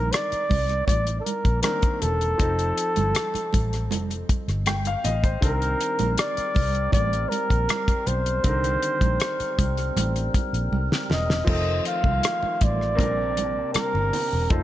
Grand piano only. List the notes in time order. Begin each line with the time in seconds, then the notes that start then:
Already playing: D#3 C4 D4 A#4
1.63 D#3 A#3 C4 D4
2.38 F3 C4 D#4
2.42 A4
4.67 G5
4.87 F5
5.04 D#5
5.24 C5
5.41 D#3 C4 D4
5.45 A#4
8.43 D3 C4 A#4
8.50 D#3
11.45 F3 C4 D#4
11.49 A4
12.95 A#3 C4 D4
13.00 A#4
14.50 A3 D#4 F4 C5